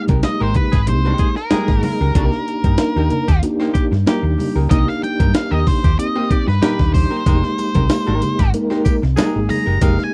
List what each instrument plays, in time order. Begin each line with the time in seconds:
0.08 fingered electric bass C2, hollow-body jazz guitar G#3 D#4 G4 A#4, kick, closed hi-hat, high conga
0.23 tonewheel organ G#3 A#3 D#4 G4, lead electric guitar D#5, muted fingered electric bass stroke, snare, closed hi-hat
0.40 fingered electric bass G#1, hollow-body jazz guitar G#3 D#4 G4 A#4, lead electric guitar C5
0.55 lead electric guitar B4, muted hollow-body jazz guitar stroke, kick, closed hi-hat, muted conga, low conga
0.72 fingered electric bass G#1, tenor saxophone G#4, muted hollow-body jazz guitar stroke, kick, snare, closed hi-hat
0.86 fingered electric bass C2, tonewheel organ G#3 A#3 D#4 G4, lead electric guitar C5, muted hollow-body jazz guitar stroke, closed hi-hat
1.05 hollow-body jazz guitar G#3 D#4 G4 C5
1.18 tenor saxophone G#4, muted hollow-body jazz guitar stroke, kick, closed hi-hat, muted conga
1.36 lead electric guitar A#4, muted hollow-body jazz guitar stroke, snare
1.50 tonewheel organ G#3 A#3 D#4 G#4, hollow-body jazz guitar G#3 D#4 G4 A#4, tenor saxophone G#4, muted fingered electric bass stroke, snare, closed hi-hat, muted conga, high conga
1.68 fingered electric bass G#1, kick, snare
1.83 lead electric guitar A#4, muted hollow-body jazz guitar stroke, open hi-hat, high conga, low conga
2.01 fingered electric bass C#2, hollow-body jazz guitar G#3 D#4 G4 A#4
2.15 fingered electric bass C2, tonewheel organ A#3 D4 D#4 G4, hollow-body jazz guitar A#3 D#4 G4 A#4, kick, closed hi-hat, muted conga, low conga
2.32 muted hollow-body jazz guitar stroke, snare
2.48 muted hollow-body jazz guitar stroke, closed hi-hat
2.64 fingered electric bass G2, hollow-body jazz guitar A#3 D#4 G4 A#4, kick, closed hi-hat, high conga
2.78 tonewheel organ A#3 D4 D#4 A#4, muted fingered electric bass stroke, muted hollow-body jazz guitar stroke, snare, closed hi-hat, muted conga
2.96 fingered electric bass D#2, hollow-body jazz guitar A#3 D#4 G4 A#4
3.10 muted hollow-body jazz guitar stroke, closed hi-hat, low conga
3.28 fingered electric bass D#2, tenor saxophone G4, muted hollow-body jazz guitar stroke, kick, snare, closed hi-hat
3.42 tonewheel organ A#3 D4 D#4 F#4, muted hollow-body jazz guitar stroke, closed hi-hat
3.50 tonewheel organ G4
3.60 hollow-body jazz guitar A#3 D#4 G4 C5, snare
3.74 tenor saxophone G4, muted fingered electric bass stroke, muted hollow-body jazz guitar stroke, kick, closed hi-hat
3.91 fingered electric bass G2, muted hollow-body jazz guitar stroke, snare
4.06 tonewheel organ A#3 D4 D#4 F#4, hollow-body jazz guitar A#3 D#4 G4 A#4, tenor saxophone G4, muted fingered electric bass stroke, snare, closed hi-hat, muted conga, high conga
4.14 tonewheel organ G4
4.23 fingered electric bass D#2
4.38 muted hollow-body jazz guitar stroke, open hi-hat, muted conga, high conga, low conga
4.56 fingered electric bass C#2, hollow-body jazz guitar A#3 D#4 G4 A#4
4.70 fingered electric bass C2, tonewheel organ A#3 D4 D#4 G4, hollow-body jazz guitar A#3 D#4 G4 A#4, lead electric guitar D#5, kick, closed hi-hat, low conga
4.87 lead electric guitar F5, muted hollow-body jazz guitar stroke, snare
5.02 lead electric guitar G5, muted hollow-body jazz guitar stroke, closed hi-hat, muted conga
5.20 fingered electric bass G2, hollow-body jazz guitar A#3 D#4 G4 A#4, kick, closed hi-hat, high conga
5.34 tonewheel organ A#3 D4 D#4 G4, lead electric guitar F5, muted fingered electric bass stroke, snare, closed hi-hat, muted conga
5.51 fingered electric bass D#2, hollow-body jazz guitar A#3 D#4 G4 A#4, lead electric guitar D#5
5.66 lead electric guitar C5, muted hollow-body jazz guitar stroke, kick, open hi-hat, muted conga, low conga
5.83 fingered electric bass D#2, tenor saxophone G4, muted hollow-body jazz guitar stroke, kick, snare, closed hi-hat
5.98 tonewheel organ A#3 C4 D#4 G4, lead electric guitar D#5, muted hollow-body jazz guitar stroke, closed hi-hat
6.15 hollow-body jazz guitar A#3 D#4 G4 C5
6.30 tenor saxophone G4, lead electric guitar D5, muted fingered electric bass stroke, muted hollow-body jazz guitar stroke, kick, closed hi-hat, muted conga
6.47 fingered electric bass G2, lead electric guitar B4, muted hollow-body jazz guitar stroke, snare
6.62 tonewheel organ A#2 D4 D#4 G4, hollow-body jazz guitar A#3 D#4 G4 A#4, tenor saxophone G4, muted fingered electric bass stroke, snare, closed hi-hat, muted conga, high conga
6.79 fingered electric bass D#2, kick, snare
6.94 lead electric guitar C5, muted hollow-body jazz guitar stroke, kick, open hi-hat, high conga, low conga
7.11 hollow-body jazz guitar A#3 D#4 G4 A#4
7.26 fingered electric bass F1, tonewheel organ G#3 A#3 D#4 G4, hollow-body jazz guitar G#3 D#4 G4 A#4, kick, closed hi-hat, tambourine, low conga
7.43 muted hollow-body jazz guitar stroke, snare
7.58 muted hollow-body jazz guitar stroke, closed hi-hat, tambourine, muted conga
7.75 fingered electric bass C2, hollow-body jazz guitar G#3 D#4 G4 A#4, kick, closed hi-hat, high conga
7.89 tonewheel organ G3 A#3 D#4 G4, muted hollow-body jazz guitar stroke, muted fingered electric bass stroke, snare, closed hi-hat, tambourine, muted conga
7.96 tonewheel organ G#3
8.07 fingered electric bass G#1, hollow-body jazz guitar G#3 D#4 G4 A#4
8.22 muted hollow-body jazz guitar stroke, closed hi-hat, tambourine, low conga
8.39 fingered electric bass G#1, tenor saxophone G4, muted hollow-body jazz guitar stroke, kick, snare, closed hi-hat
8.53 tonewheel organ G#3 A#3 D#4 A#4, muted hollow-body jazz guitar stroke, closed hi-hat, muted conga
8.70 hollow-body jazz guitar G#3 D#4 G4 C5, snare
8.85 tenor saxophone G4, muted hollow-body jazz guitar stroke, muted fingered electric bass stroke, kick, closed hi-hat, tambourine, muted conga
9.02 fingered electric bass C2, muted hollow-body jazz guitar stroke, snare
9.16 hollow-body jazz guitar G#3 D#4 G4 A#4, tonewheel organ G#3 A#3 D#4 G#4, tenor saxophone G#4, snare, closed hi-hat, tambourine, high conga
9.36 fingered electric bass G#1
9.49 lead electric guitar A#5, muted hollow-body jazz guitar stroke, open hi-hat, tambourine, muted conga, high conga, low conga
9.66 fingered electric bass F#1, hollow-body jazz guitar G#3 D#4 G4 A#4
9.81 fingered electric bass F1, tonewheel organ G#3 A#3 D#4 G4, hollow-body jazz guitar G#3 D#4 G4 A#4, lead electric guitar F5, kick, closed hi-hat, tambourine, muted conga, low conga
9.99 muted hollow-body jazz guitar stroke, snare
10.04 lead electric guitar G#5